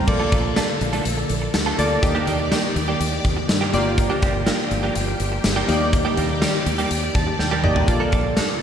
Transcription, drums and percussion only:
0.08 kick, crash
0.32 kick, closed hi-hat
0.56 snare, closed hi-hat, tambourine
0.81 closed hi-hat
0.93 closed hi-hat
1.05 closed hi-hat
1.30 closed hi-hat
1.54 snare, closed hi-hat, tambourine
1.79 closed hi-hat
2.03 kick, closed hi-hat
2.27 closed hi-hat
2.52 snare, closed hi-hat, tambourine
2.76 closed hi-hat
3.01 closed hi-hat
3.25 kick, closed hi-hat
3.49 snare, closed hi-hat, tambourine
3.73 closed hi-hat
3.98 kick, closed hi-hat
4.22 kick, closed hi-hat
4.47 snare, closed hi-hat, tambourine
4.71 closed hi-hat
4.95 closed hi-hat
5.20 closed hi-hat
5.44 snare, closed hi-hat, tambourine
5.69 closed hi-hat
5.93 kick, closed hi-hat
6.17 closed hi-hat
6.42 snare, closed hi-hat, tambourine
6.66 closed hi-hat
6.79 closed hi-hat
6.91 closed hi-hat
7.15 kick, closed hi-hat
7.39 snare
7.64 mid tom
7.76 floor tom
7.88 kick, closed hi-hat
8.12 kick, closed hi-hat
8.37 snare, closed hi-hat, tambourine

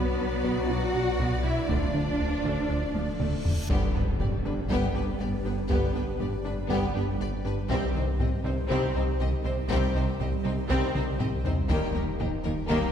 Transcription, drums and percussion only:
0.44 taiko
1.19 taiko
1.69 taiko
2.45 taiko
2.95 taiko high
3.20 taiko mid
3.45 taiko low
3.70 taiko
3.95 taiko rim
4.20 taiko low-mid
4.45 taiko rim
4.70 taiko
4.95 taiko rim
5.70 taiko
6.20 taiko low-mid
6.69 taiko
7.70 taiko
8.20 taiko low-mid
8.45 taiko rim
8.70 taiko
9.45 taiko rim
9.70 taiko
10.20 taiko low-mid
10.70 taiko
10.95 taiko mid
11.20 taiko low-mid
11.45 taiko low
11.70 taiko
12.20 taiko low-mid
12.70 taiko

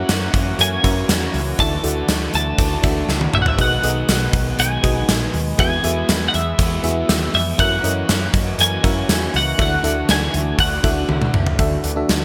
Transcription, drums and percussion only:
0.09 snare, closed hi-hat, tambourine, cowbell
0.34 kick, closed hi-hat
0.59 closed hi-hat, cowbell
0.84 kick, closed hi-hat
1.09 snare, closed hi-hat, tambourine, cowbell
1.34 open hi-hat
1.59 kick, closed hi-hat, cowbell
1.84 closed hi-hat, cowbell
2.08 snare, closed hi-hat, tambourine, cowbell
2.34 closed hi-hat
2.58 kick, closed hi-hat, cowbell
2.83 kick, closed hi-hat, cowbell
3.09 snare, cowbell
3.21 high tom
3.34 mid tom
3.46 floor tom
3.58 kick, closed hi-hat, cowbell
3.83 closed hi-hat, cowbell
4.09 snare, closed hi-hat, tambourine, cowbell
4.33 kick, closed hi-hat
4.59 closed hi-hat, cowbell
4.84 kick, closed hi-hat
5.09 snare, closed hi-hat, tambourine, cowbell
5.34 open hi-hat
5.58 kick, closed hi-hat, cowbell
5.84 closed hi-hat, cowbell
6.09 snare, closed hi-hat, tambourine, cowbell
6.34 closed hi-hat
6.59 kick, closed hi-hat, cowbell
6.84 closed hi-hat
7.09 snare, closed hi-hat, tambourine, cowbell
7.34 open hi-hat
7.59 kick, closed hi-hat, cowbell
7.84 closed hi-hat, cowbell
8.09 snare, closed hi-hat, tambourine, cowbell
8.34 kick, closed hi-hat
8.59 closed hi-hat, cowbell
8.84 kick, closed hi-hat
9.09 snare, closed hi-hat, tambourine, cowbell
9.34 open hi-hat
9.59 kick, closed hi-hat, cowbell
9.84 closed hi-hat, cowbell
10.09 snare, closed hi-hat, tambourine, cowbell
10.34 closed hi-hat
10.59 kick, closed hi-hat, cowbell
10.84 kick, closed hi-hat, cowbell
11.09 high tom, cowbell
11.22 mid tom
11.34 mid tom
11.46 floor tom
11.59 kick, closed hi-hat, cowbell
11.84 closed hi-hat, cowbell
12.09 snare, closed hi-hat, cowbell

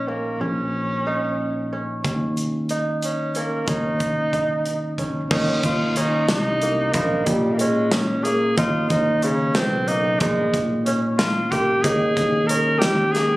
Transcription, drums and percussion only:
2.05 kick, closed hi-hat
2.37 closed hi-hat
2.69 closed hi-hat
3.02 closed hi-hat
3.35 closed hi-hat
3.68 kick, closed hi-hat
4.00 kick, closed hi-hat
4.33 kick, closed hi-hat
4.66 closed hi-hat
4.98 kick, closed hi-hat
5.31 kick, crash
5.63 kick, closed hi-hat
5.96 closed hi-hat
6.29 snare, closed hi-hat
6.62 closed hi-hat
6.94 kick, closed hi-hat
7.26 kick, closed hi-hat
7.59 closed hi-hat
7.92 snare, closed hi-hat
8.25 closed hi-hat
8.58 kick, closed hi-hat
8.90 kick, closed hi-hat
9.22 closed hi-hat
9.55 snare, closed hi-hat
9.88 closed hi-hat
10.20 kick, closed hi-hat
10.54 kick, closed hi-hat
10.86 closed hi-hat
11.19 snare, closed hi-hat
11.52 kick, closed hi-hat
11.84 kick, closed hi-hat
12.17 kick, closed hi-hat
12.49 closed hi-hat
12.82 snare, closed hi-hat
13.15 snare, closed hi-hat

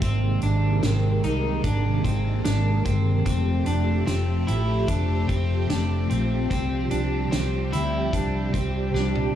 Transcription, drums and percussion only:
0.02 kick, closed hi-hat
0.42 closed hi-hat
0.83 snare, closed hi-hat
1.24 closed hi-hat
1.64 kick, closed hi-hat
2.05 kick, closed hi-hat
2.45 snare, closed hi-hat
2.86 kick, closed hi-hat
3.26 kick, closed hi-hat
3.66 closed hi-hat
4.07 snare, closed hi-hat
4.48 closed hi-hat
4.88 kick, closed hi-hat
5.29 kick, closed hi-hat
5.70 snare, closed hi-hat
6.10 closed hi-hat
6.51 kick, closed hi-hat
6.91 closed hi-hat
7.32 snare, closed hi-hat
7.73 closed hi-hat
8.13 kick, closed hi-hat
8.54 kick, closed hi-hat
8.95 snare
9.15 high tom

